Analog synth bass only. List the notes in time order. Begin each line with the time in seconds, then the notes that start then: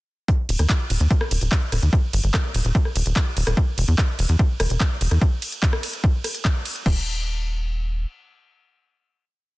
0.49 D#1
0.59 D#2
0.90 D#1
1.00 D#2
1.31 D#1
1.41 D#1
1.72 D#1
1.82 D#2
2.13 G1
2.24 G1
2.54 D#1
2.65 D#1
2.96 D#1
3.06 D#1
3.37 D#1
3.47 D#1
3.78 E1
3.88 E2
4.19 E1
4.29 E2
4.60 E1
4.70 E1
5.01 E1
5.11 E2
6.86 D#1